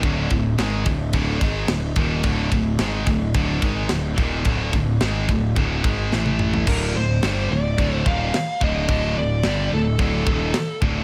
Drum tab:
CC |----------------|----------------|----------------|x---x---x---x---|
RD |x-x-x-x-x-x-x-x-|x-x-x-x-x-x-x-x-|x-x-x-x-x-x-----|----------------|
SD |----o-------o---|----o-------o---|----o-------o---|----o-------o---|
T1 |----------------|----------------|-------------o--|----------------|
T2 |----------------|----------------|--------------o-|----------------|
FT |----------------|----------------|---------------o|----------------|
BD |o-o---o-o-o---o-|o-o---o-o-o---o-|o-o---o-o-o-----|o-------o-o---o-|

CC |x---x---x---x---|
RD |----------------|
SD |----o-------o---|
T1 |----------------|
T2 |----------------|
FT |----------------|
BD |o-------o-o---o-|